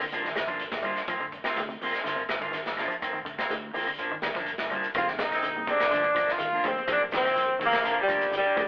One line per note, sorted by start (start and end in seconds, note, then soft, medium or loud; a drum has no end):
0.00 0.18 D3 medium
0.00 high conga medium
0.00 claves medium
0.00 shekere medium
0.12 0.32 G1 medium
0.12 0.27 F3 medium
0.12 0.28 A#3 medium
0.12 0.28 D4 medium
0.12 0.28 F4 medium
0.12 closed hi-hat medium
0.12 high conga medium
0.12 shekere medium
0.24 0.42 D#3 medium
0.24 snare soft
0.35 0.66 G1 medium
0.35 snare medium
0.35 closed hi-hat soft
0.35 high conga medium
0.35 claves medium
0.35 shekere medium
0.47 0.66 F3 medium
0.47 0.63 A#3 soft
0.47 0.63 D4 soft
0.47 0.63 F4 soft
0.47 kick medium
0.47 shekere soft
0.59 closed hi-hat medium
0.59 shekere medium
0.71 0.92 G1 medium
0.71 kick medium
0.71 snare medium
0.71 closed hi-hat soft
0.71 high conga medium
0.82 0.99 F3 medium
0.82 1.01 G3 medium
0.82 1.00 A#3 medium
0.82 1.00 D4 medium
0.82 1.00 F4 medium
0.82 closed hi-hat soft
0.82 high conga medium
0.82 claves medium
0.86 shekere soft
0.95 snare soft
0.95 closed hi-hat soft
0.95 shekere medium
1.08 1.47 F1 medium
1.08 1.24 D#3 medium
1.08 1.18 F3 medium
1.08 1.24 A#3 medium
1.08 1.24 C4 medium
1.08 1.24 F4 medium
1.08 kick loud
1.08 closed hi-hat medium
1.08 claves medium
1.08 shekere medium
1.20 1.38 D3 medium
1.20 closed hi-hat soft
1.32 kick medium
1.32 closed hi-hat soft
1.44 1.63 C3 medium
1.44 1.61 A#3 soft
1.44 1.61 C4 soft
1.44 1.60 F4 medium
1.44 snare medium
1.44 closed hi-hat soft
1.44 claves medium
1.44 shekere soft
1.56 1.76 D2 medium
1.56 closed hi-hat medium
1.56 high conga medium
1.56 shekere medium
1.69 1.87 C3 medium
1.69 closed hi-hat soft
1.81 1.92 F2 medium
1.81 1.97 D#3 medium
1.81 1.97 A#3 medium
1.81 1.98 C4 medium
1.81 1.98 F4 medium
1.81 open hi-hat medium
1.81 high conga medium
1.81 shekere soft
1.93 snare soft
1.93 closed hi-hat soft
1.93 claves medium
1.93 shekere medium
2.04 2.25 G1 loud
2.04 2.14 D3 medium
2.04 2.21 F3 medium
2.04 2.21 A#3 medium
2.04 2.22 F4 medium
2.04 muted clean electric guitar stroke medium
2.04 snare soft
2.04 closed hi-hat medium
2.04 high conga medium
2.04 shekere medium
2.16 2.35 C3 medium
2.16 closed hi-hat soft
2.29 2.59 G1 loud
2.29 snare medium
2.29 closed hi-hat soft
2.29 high conga medium
2.29 claves medium
2.29 shekere medium
2.41 2.50 D3 medium
2.41 2.57 A#3 soft
2.41 2.57 D4 soft
2.41 2.57 F4 medium
2.41 kick medium
2.41 closed hi-hat soft
2.41 shekere soft
2.52 2.71 D#3 medium
2.52 snare soft
2.52 closed hi-hat medium
2.52 shekere medium
2.66 2.86 G1 medium
2.66 snare medium
2.66 closed hi-hat soft
2.66 high conga medium
2.77 2.93 F3 medium
2.77 2.93 A#3 medium
2.77 2.94 D4 medium
2.77 2.94 F4 medium
2.77 snare soft
2.77 closed hi-hat soft
2.77 high conga medium
2.77 claves medium
2.77 shekere soft
2.88 3.07 F3 medium
2.88 shekere medium
3.02 3.41 F1 loud
3.02 3.17 D#3 medium
3.02 3.18 A#3 medium
3.02 3.18 C4 medium
3.02 kick medium
3.02 closed hi-hat medium
3.02 claves medium
3.02 shekere medium
3.13 3.22 D#3 medium
3.13 closed hi-hat soft
3.25 3.43 D3 medium
3.25 kick medium
3.25 closed hi-hat medium
3.38 3.54 A#3 soft
3.38 3.53 C4 medium
3.38 kick medium
3.38 snare medium
3.38 closed hi-hat soft
3.38 claves medium
3.38 shekere soft
3.50 3.70 D2 medium
3.50 closed hi-hat medium
3.50 high conga medium
3.50 shekere medium
3.74 3.85 F2 medium
3.74 3.84 C3 medium
3.74 3.89 D#3 medium
3.74 3.89 A#3 medium
3.74 3.90 C4 medium
3.74 open hi-hat medium
3.74 high conga medium
3.74 shekere soft
3.87 4.05 D3 medium
3.87 claves medium
3.87 shekere medium
3.98 4.18 G1 loud
3.98 4.14 F3 medium
3.98 4.14 A#3 medium
3.98 4.14 D4 medium
3.98 closed hi-hat medium
3.98 shekere medium
4.12 4.29 D#3 medium
4.22 4.53 G1 loud
4.22 snare medium
4.22 closed hi-hat soft
4.22 high conga medium
4.22 claves medium
4.22 shekere medium
4.35 4.54 F3 medium
4.35 4.51 A#3 soft
4.35 4.50 D4 medium
4.35 kick medium
4.35 snare soft
4.35 shekere soft
4.46 closed hi-hat medium
4.46 shekere medium
4.58 4.78 G1 medium
4.58 kick medium
4.58 snare medium
4.58 closed hi-hat soft
4.58 high conga medium
4.70 4.87 F3 medium
4.70 4.89 G3 medium
4.70 4.87 A#3 medium
4.70 4.87 D4 medium
4.70 closed hi-hat medium
4.70 high conga medium
4.70 claves medium
4.70 shekere soft
4.83 closed hi-hat soft
4.83 shekere medium
4.94 5.14 F1 medium
4.94 5.10 D#3 medium
4.94 5.13 D#3 medium
4.94 5.22 G3 medium
4.94 5.22 A#3 medium
4.94 5.11 A#3 medium
4.94 5.22 C4 medium
4.94 5.11 C4 medium
4.94 5.23 D#4 medium
4.94 5.08 F4 medium
4.94 kick loud
4.94 closed hi-hat medium
4.94 low conga medium
4.94 claves medium
4.94 shekere medium
4.98 5.08 F4 medium
5.08 snare soft
5.19 5.68 A#1 medium
5.19 5.37 C3 medium
5.19 5.72 D#4 medium
5.19 kick medium
5.19 snare medium
5.19 closed hi-hat soft
5.19 high conga medium
5.19 shekere medium
5.24 5.72 D#4 medium
5.32 5.47 A#3 soft
5.32 5.47 C4 medium
5.32 snare soft
5.32 closed hi-hat soft
5.32 claves medium
5.32 shekere soft
5.43 5.61 D3 medium
5.43 closed hi-hat medium
5.43 shekere medium
5.56 5.66 G3 medium
5.56 5.67 A#3 medium
5.56 5.67 C4 medium
5.56 5.67 D#4 medium
5.56 high conga medium
5.67 5.85 C3 medium
5.67 5.83 D#3 medium
5.67 5.83 A#3 medium
5.67 5.84 C4 medium
5.67 6.33 D4 medium
5.67 6.34 D4 medium
5.67 kick medium
5.67 closed hi-hat medium
5.67 high conga medium
5.67 low conga medium
5.67 shekere soft
5.79 5.90 F1 medium
5.79 5.85 C4 medium
5.79 5.86 D#4 medium
5.79 snare medium
5.79 low conga medium
5.79 claves medium
5.79 shekere medium
5.91 6.12 G1 loud
5.91 6.09 D3 medium
5.91 6.18 F3 medium
5.91 6.07 F3 medium
5.91 6.18 A3 medium
5.91 6.19 A#3 medium
5.91 6.07 A#3 medium
5.91 6.07 D4 medium
5.91 6.19 D4 medium
5.91 closed hi-hat medium
5.91 shekere medium
6.04 kick medium
6.15 6.46 G1 loud
6.15 6.33 F3 medium
6.15 6.31 F3 medium
6.15 6.32 A#3 medium
6.15 6.32 D4 medium
6.15 kick medium
6.15 closed hi-hat soft
6.15 claves medium
6.15 shekere medium
6.28 6.69 F4 medium
6.28 snare soft
6.28 shekere medium
6.38 6.57 D#3 medium
6.38 closed hi-hat medium
6.38 high conga medium
6.38 shekere medium
6.51 6.79 F3 medium
6.51 6.79 A3 medium
6.51 6.79 A#3 medium
6.51 6.68 A#3 soft
6.51 6.79 D4 medium
6.51 6.68 D4 medium
6.51 muted fingered electric bass stroke soft
6.64 6.74 D2 loud
6.64 6.82 F3 medium
6.64 6.90 C4 medium
6.64 kick medium
6.64 closed hi-hat medium
6.64 high conga medium
6.64 claves medium
6.64 shekere soft
6.68 6.90 C4 medium
6.77 high conga medium
6.77 shekere soft
6.88 7.08 F1 loud
6.88 7.03 D#3 medium
6.88 7.06 F3 medium
6.88 7.04 A#3 medium
6.88 7.04 C4 medium
6.88 7.02 D4 medium
6.88 kick loud
6.88 closed hi-hat medium
6.88 low conga medium
6.88 claves medium
6.88 shekere medium
6.93 7.03 D4 medium
7.12 7.61 A#1 medium
7.12 7.30 D#3 medium
7.12 7.55 G3 medium
7.12 7.55 A#3 medium
7.12 7.55 C4 medium
7.12 7.56 D#4 medium
7.12 kick medium
7.12 snare medium
7.12 closed hi-hat medium
7.12 high conga medium
7.12 shekere medium
7.17 7.60 C4 medium
7.17 7.60 C4 loud
7.24 7.40 A#3 soft
7.24 7.40 C4 medium
7.24 snare soft
7.24 claves medium
7.24 shekere soft
7.35 7.54 F3 medium
7.35 closed hi-hat medium
7.35 shekere medium
7.59 7.78 D#3 medium
7.59 7.76 D#3 medium
7.59 7.76 A#3 medium
7.59 7.76 C4 medium
7.59 kick medium
7.59 closed hi-hat medium
7.59 high conga medium
7.59 low conga medium
7.59 shekere soft
7.66 7.97 A#3 medium
7.66 7.98 A#3 loud
7.71 7.82 F1 medium
7.71 snare medium
7.71 low conga medium
7.71 claves medium
7.71 shekere medium
7.84 8.04 G1 loud
7.84 8.00 F3 medium
7.84 8.00 A#3 medium
7.84 8.00 D4 medium
7.84 muted clean electric guitar stroke medium
7.84 closed hi-hat medium
7.84 shekere medium
8.00 8.32 G3 medium
8.00 8.34 G3 medium
8.08 8.38 G1 medium
8.08 8.26 F3 medium
8.08 8.24 F3 medium
8.08 8.30 A3 medium
8.08 8.30 A#3 medium
8.08 8.25 A#3 medium
8.08 8.31 D4 medium
8.08 8.25 D4 medium
8.08 8.31 F4 medium
8.08 kick medium
8.08 closed hi-hat medium
8.08 claves medium
8.08 shekere medium
8.21 closed hi-hat soft
8.21 shekere medium
8.31 8.50 D3 medium
8.31 closed hi-hat medium
8.31 high conga medium
8.31 shekere medium
8.36 8.68 G3 medium
8.36 8.68 G3 loud
8.43 8.60 A#3 soft
8.43 8.60 D4 medium
8.43 muted fingered electric bass stroke soft
8.56 8.67 D2 loud
8.56 8.68 F3 medium
8.56 8.68 A3 medium
8.56 8.68 A#3 medium
8.56 8.68 D4 medium
8.56 8.68 F4 medium
8.56 kick medium
8.56 closed hi-hat soft
8.56 high conga medium
8.56 claves medium
8.56 shekere soft